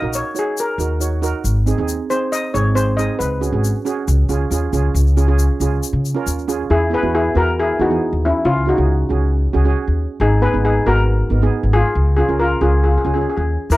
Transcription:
Already playing: D#5
0.02 A#1 D#4 F#4 A#4
0.13 C#5, shaker
0.34 D#4 F#4 C#5, shaker
0.39 G#4
0.57 A#4, shaker
0.78 D#2 D#4 F#4 A#4, shaker
1.00 D#4 F#4 C#5, shaker
1.22 D#4 F#4 A#4, shaker
1.44 G#1, shaker
1.66 C4 D#4 G#4, shaker
1.78 D#2 C4 D#4 G#4
1.88 shaker
2.10 C4 D#4 G#4 C5, shaker
2.32 D#5, shaker
2.54 G#1 C4 D#4 G#4 C#5, shaker
2.75 C4 D#4 G#4 C5, shaker
2.97 C4 D#4 G#4 D#5, shaker
3.19 C#2 B4, shaker
3.41 C#4 F#4 G#4, shaker
3.52 G#1 C#4 F#4 G#4
3.64 shaker
3.85 C#4 F#4 G#4, shaker
4.08 C#2, shaker
4.29 C#2 C#4 F4 G#4, shaker
4.51 D#2 C#4 F4 G#4, shaker
4.73 C#2 C#4 F4 G#4, shaker
4.95 C#2, shaker
5.07 shaker
5.17 C#4 F4 G#4, shaker
5.28 C#4 F4 G#4
5.39 shaker
5.60 C#2 C#4 F4 G#4, shaker
5.83 shaker
5.93 C#3
6.05 shaker
6.15 C#4 F4 A#4
6.26 D#2, shaker
6.39 shaker
6.48 C#4 F4 G#4, shaker
6.70 E2 E4 G#4
6.90 B3 E4 G#4
6.94 B4
7.02 E2 B3 E4 F#4
7.15 E4 G#4
7.34 E2 B3 E4 F#4 A#4 B4
7.60 E4 G#4
7.79 E2 B3 D#4 E4 F#4 G#4
7.90 E3 B3 G#4
8.13 D#2
8.25 C#4 E4
8.45 C#2 C#4 F4
8.66 C#4 D#4 F#4 G#4
8.77 C#2 C#4 F#4 G#4
9.09 C#2 C#4 F#4 G#4
9.53 C#2 C#4 F#4 G#4
9.65 C#4 F#4 G#4
9.88 D#2
10.20 G#1 D#4 G#4
10.41 B3 D#4 G#4 B4
10.53 G#1 B3 D#4 G#4
10.65 D#4 G#4
10.86 G#1 B3 D#4 F#4 A#4 B4
11.30 G#1 B3 D#4 A#4
11.42 B3 D#4 G#4
11.63 G#1
11.73 F4 G#4
11.95 C#2
12.17 C#4 F4 G#4
12.29 C#2 C#4 F4 A#4
12.40 F4 A#4
12.61 C#2 C#4 F4 G#4
12.84 F4 G#4
12.91 G#4
12.98 G#4
13.05 C#2 C#4 F4 G#4
13.14 C#4 F4 G#4
13.21 G#4
13.29 G#4
13.37 D#2 G#4
13.70 E2 E4 A#4, shaker

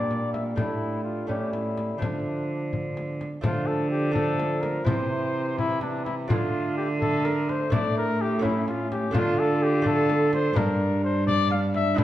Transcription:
Already playing: A#2 G3 A#3 D4 D5
0.11 frame drum
0.33 E5, frame drum
0.56 A2 G3 A3 D4 E4, frame drum
1.04 F4
1.27 A2 G3 A3 C#4 G4, frame drum
1.53 E4, frame drum
1.77 frame drum
1.98 D3 F3 A3 D4
2.02 D4, frame drum
2.73 frame drum
2.97 frame drum
3.21 frame drum
3.41 D3 F3 A3 D4 F4, frame drum
3.67 A4
3.91 G4
4.12 F3 A3 D4 A4, frame drum
4.39 frame drum
4.61 A#4, frame drum
4.84 C3 E3 E4 C5, frame drum
5.58 E3 E4, frame drum
5.81 D4, frame drum
6.05 E4, frame drum
6.28 D3 A3 D4 F4, frame drum
6.77 G4
7.00 A3 A4, frame drum
7.25 A#4, frame drum
7.49 C5, frame drum
7.70 A2 A3 D4 E4 D5, frame drum
7.98 A#4
8.22 G4
8.39 A3 C#4 E4
8.44 C#4 E4, frame drum
8.68 F4, frame drum
8.92 G4, frame drum
9.11 D3 A3 D4 F4, frame drum
9.16 F4
9.39 A4
9.63 G4
9.82 A3 D4 F4, frame drum
9.87 A4
10.10 frame drum
10.33 C5, frame drum
10.53 G2 D4 G4 A#4, frame drum
11.04 C5
11.26 D4 D5, frame drum
11.51 F5, frame drum
11.74 E5, frame drum
11.94 A2 D4 E4, frame drum
11.99 A2

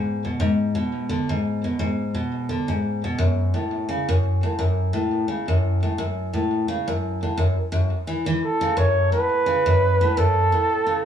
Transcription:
Already playing: G#2
0.25 B2
0.40 G#2
0.75 B2
1.09 D3
1.29 G#2
1.64 B2
1.79 G#2
2.14 B2
2.49 D3
2.68 G#2
3.04 B2
3.18 F#2
3.54 A2
3.89 C#3
4.09 F#2
4.43 A2
4.59 F#2
4.93 A2
5.28 C#3
5.48 F#2
5.83 A2
5.98 F#2
6.33 A2
6.68 C#3
6.88 F#2
7.23 A2
7.37 F#2
7.72 F#2
8.07 E3
8.26 E3
8.44 A4
8.61 C#3
8.77 F#2 C#5
9.12 A2 B4
9.46 C#3
9.66 F#2
10.01 A2
10.17 F#2 A4
10.52 A2
10.87 C#3

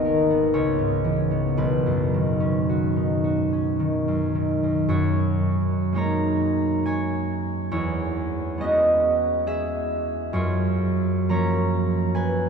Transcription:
Already playing: G#1 D#2 D#3 B3 D#4 G#4 D#5 F#5 G#5
0.05 A#4
0.30 B3
0.54 C#2 C#5
0.79 G#2
1.04 E3
1.31 B3
1.57 B1 B4
1.86 F#2
2.14 D#3
2.40 C#4
2.69 F#4
2.96 D#4
3.24 F#4
3.53 C#4
3.79 D#3
4.08 F#2
4.35 D#3
4.63 F#2
4.89 F#2 F#4 C#5
5.93 G#3 A#3 D#4 C#5
5.97 A#5
6.86 C#5 G#5
7.71 E2 E4 C#5
8.58 G#3 B3 C#4 D#5
8.64 F#4
9.47 G#4 E5
10.33 F#2 F4 C#5
11.29 F3 A#3 C#4 C#5 A#5
12.15 B4 G#5

